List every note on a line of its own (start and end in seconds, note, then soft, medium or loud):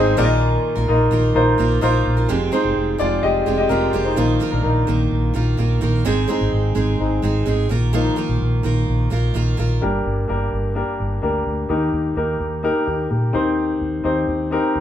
0.00 0.13 G#1 loud
0.00 0.20 G#2 medium
0.00 0.17 G#3 medium
0.00 0.17 C4 medium
0.00 0.20 C4 medium
0.00 0.17 D#4 medium
0.00 0.18 D#4 medium
0.00 0.18 G#4 medium
0.00 0.20 G#4 medium
0.00 0.20 C5 medium
0.00 0.19 D#5 loud
0.17 0.56 A#1 medium
0.17 0.76 A#2 medium
0.17 0.84 A#2 medium
0.17 0.76 D#3 medium
0.17 0.75 A#3 medium
0.17 0.76 A#3 medium
0.17 0.76 D#4 medium
0.17 0.76 F4 medium
0.17 0.76 A#4 medium
0.17 0.74 A#4 loud
0.17 0.24 D5 medium
0.24 0.79 D#5 medium
0.76 0.86 A#1 medium
0.76 1.11 A#3 soft
0.76 1.11 F4 medium
0.76 1.11 A#4 medium
0.88 1.07 A#1 loud
0.88 1.27 A#3 medium
0.88 1.27 D#4 medium
0.88 1.27 F4 medium
0.88 1.27 A#4 medium
0.88 1.27 D#5 medium
1.11 1.31 A#1 loud
1.11 1.57 D#3 medium
1.11 1.58 A#3 medium
1.11 1.59 F4 medium
1.11 1.59 A#4 medium
1.34 1.55 A#1 medium
1.34 1.73 A#3 medium
1.34 1.74 D#4 medium
1.34 1.74 F4 medium
1.34 1.74 A#4 medium
1.34 1.74 C5 medium
1.58 1.78 A#1 medium
1.58 1.80 D#3 medium
1.58 1.81 A#3 medium
1.58 1.82 F4 medium
1.58 1.82 A#4 medium
1.81 2.02 A#1 loud
1.81 2.17 D#3 medium
1.81 2.21 A#3 medium
1.81 2.17 A#3 medium
1.81 2.21 D#4 medium
1.81 2.21 F4 medium
1.81 2.17 F4 medium
1.81 2.21 A#4 medium
1.81 2.15 A#4 medium
1.81 2.21 C5 medium
2.06 2.25 A#1 medium
2.17 2.29 A#3 soft
2.17 2.29 F4 medium
2.17 2.29 A#4 medium
2.29 2.49 F1 loud
2.29 2.52 F2 medium
2.29 2.53 C3 medium
2.29 2.51 G#3 medium
2.29 2.52 C4 medium
2.29 2.52 F4 medium
2.29 2.53 G4 medium
2.52 2.97 G#3 medium
2.52 2.98 C4 medium
2.52 2.97 D#4 medium
2.52 3.00 F4 medium
2.52 3.00 G4 medium
2.52 3.01 C5 medium
2.65 2.74 F1 medium
2.76 2.96 F1 medium
2.98 3.19 F1 medium
2.98 4.13 F3 soft
2.98 3.45 G#3 medium
2.98 4.14 G#3 soft
2.98 3.46 C4 medium
2.98 3.47 F4 medium
2.98 3.22 F4 medium
2.98 3.47 G4 medium
2.98 3.24 D5 medium
3.23 3.43 F1 medium
3.23 3.57 G4 medium
3.23 3.56 D#5 medium
3.46 3.66 F1 medium
3.46 3.68 G#3 medium
3.46 3.69 C4 medium
3.46 3.70 F4 medium
3.46 3.71 G4 medium
3.58 3.64 G4 medium
3.58 3.63 D#5 medium
3.69 3.89 F1 medium
3.69 3.92 G#3 medium
3.69 3.93 C4 medium
3.69 3.93 F4 medium
3.69 4.03 F4 medium
3.69 3.94 G4 medium
3.69 4.06 A#4 medium
3.93 4.13 F1 medium
3.93 4.16 G#3 medium
3.93 4.17 C4 medium
3.93 4.16 F4 medium
3.93 4.18 G4 medium
4.04 4.17 D#4 medium
4.04 4.53 C5 medium
4.16 4.37 A#1 loud
4.16 4.40 A#2 medium
4.16 4.39 D#3 medium
4.16 6.01 F3 soft
4.16 4.40 A#3 medium
4.16 6.02 A#3 soft
4.16 4.64 D#4 medium
4.16 4.41 F4 medium
4.16 4.41 A#4 medium
4.40 4.87 D#3 medium
4.40 4.87 A#3 medium
4.40 4.87 F4 medium
4.40 4.88 A#4 medium
4.51 4.62 A#1 medium
4.51 4.64 D4 medium
4.51 4.61 A#4 medium
4.63 4.84 A#1 loud
4.63 5.55 D#4 medium
4.63 5.54 A#4 medium
4.87 5.07 A#1 medium
4.87 5.33 D#3 medium
4.87 5.33 A#3 medium
4.87 5.34 F4 medium
4.87 5.35 A#4 medium
5.11 5.31 A#1 medium
5.34 5.54 A#1 medium
5.34 5.56 D#3 medium
5.34 5.57 A#3 medium
5.34 5.58 F4 medium
5.34 5.59 A#4 medium
5.57 5.78 A#1 loud
5.57 5.80 D#3 medium
5.57 5.81 A#3 medium
5.57 5.81 F4 medium
5.57 5.82 A#4 medium
5.81 6.01 A#1 medium
5.81 6.04 D#3 medium
5.81 6.05 A#3 medium
5.81 6.05 F4 medium
5.81 6.06 A#4 medium
6.05 6.25 G#1 medium
6.05 6.29 G#2 medium
6.05 6.29 D#3 medium
6.05 6.26 G#3 medium
6.05 6.27 C4 medium
6.05 6.28 D#4 medium
6.05 6.29 G#4 medium
6.28 6.74 G#3 medium
6.28 6.98 G#3 soft
6.28 6.74 C4 medium
6.28 6.98 C4 medium
6.28 6.76 D#4 medium
6.28 6.98 D#4 medium
6.28 6.76 G#4 medium
6.41 6.51 G#1 medium
6.52 6.72 G#1 loud
6.75 6.95 G#1 medium
6.75 7.21 G#3 medium
6.75 7.22 C4 medium
6.75 7.24 D#4 medium
6.75 7.24 G#4 medium
6.99 7.19 G#1 medium
6.99 7.20 G#3 soft
6.99 7.21 C4 soft
6.99 7.21 D#4 medium
7.22 7.43 G#1 medium
7.22 7.44 G#3 medium
7.22 7.45 C4 medium
7.22 7.46 D#4 medium
7.22 7.47 G#4 medium
7.46 7.66 G#1 medium
7.46 7.69 G#3 medium
7.46 7.70 C4 medium
7.46 7.70 D#4 medium
7.46 7.71 G#4 medium
7.69 8.09 A#1 medium
7.69 7.92 D#3 medium
7.69 7.93 A#3 medium
7.69 7.93 F4 medium
7.69 7.93 A#4 medium
7.93 8.17 A#2 medium
7.93 8.15 D#3 medium
7.93 9.77 F3 medium
7.93 9.78 A#3 medium
7.93 8.16 A#3 medium
7.93 9.78 D#4 medium
7.93 8.17 F4 medium
7.93 8.17 A#4 medium
8.16 8.62 D#3 medium
8.16 8.64 A#3 medium
8.16 8.64 F4 medium
8.16 8.65 A#4 medium
8.29 8.39 A#1 medium
8.41 8.60 A#1 medium
8.63 8.84 A#1 medium
8.63 9.09 D#3 medium
8.63 9.11 A#3 medium
8.63 9.11 F4 medium
8.63 9.12 A#4 medium
8.88 9.07 A#1 medium
9.10 9.31 A#1 medium
9.10 9.33 D#3 medium
9.10 9.34 A#3 medium
9.10 9.34 F4 medium
9.10 9.35 A#4 medium
9.34 9.54 A#1 medium
9.34 9.56 D#3 medium
9.34 9.57 A#3 medium
9.34 9.58 F4 medium
9.34 9.58 A#4 medium
9.57 9.78 A#1 medium
9.57 9.81 D#3 medium
9.57 9.82 A#3 medium
9.57 9.82 F4 medium
9.57 9.82 A#4 medium
9.81 10.01 G1 medium
9.81 10.48 G2 medium
9.81 10.20 A#3 medium
9.81 10.20 D4 medium
9.81 10.21 G4 medium
9.81 10.21 A#4 medium
10.05 10.25 G1 medium
10.28 10.48 G1 medium
10.28 10.67 A#3 medium
10.28 10.67 D4 medium
10.28 10.68 G4 medium
10.28 10.68 A#4 medium
10.53 10.81 G1 medium
10.75 11.14 A#3 medium
10.75 11.14 D4 medium
10.75 11.15 G4 medium
10.75 11.15 A#4 medium
11.00 11.19 G1 medium
11.22 11.42 D2 medium
11.22 11.61 A#3 medium
11.22 11.61 D4 medium
11.22 11.62 G4 medium
11.22 11.62 A#4 medium
11.47 11.66 D2 medium
11.69 11.89 D#2 medium
11.69 12.36 D#3 medium
11.69 12.08 A#3 medium
11.69 12.08 D#4 medium
11.69 12.08 G4 medium
11.69 12.09 A#4 medium
11.94 12.13 D#2 medium
12.16 12.36 D#2 medium
12.16 12.55 A#3 medium
12.16 12.55 D#4 medium
12.16 12.56 G4 medium
12.16 12.56 A#4 medium
12.40 12.69 D#2 medium
12.63 13.02 A#3 medium
12.63 12.86 D#4 medium
12.63 12.86 G4 medium
12.63 12.88 A#4 medium
12.87 13.07 D#2 medium
12.87 13.10 D#4 soft
12.87 13.10 G4 medium
13.11 13.30 A#2 medium
13.11 13.33 G4 medium
13.11 13.55 A#4 medium
13.33 13.73 D#2 medium
13.33 14.01 D#3 medium
13.33 13.92 C4 medium
13.33 13.92 D#4 medium
13.33 13.92 G4 medium
13.33 13.93 C5 medium
13.81 14.01 D#2 medium
14.04 14.24 D#2 medium
14.04 14.43 C4 medium
14.04 14.43 D#4 medium
14.04 14.44 G4 medium
14.04 14.44 C5 medium
14.28 14.57 D#2 medium
14.51 14.80 C4 medium
14.51 14.80 D#4 medium
14.51 14.80 G4 medium
14.51 14.80 A#4 medium
14.75 14.80 D#2 medium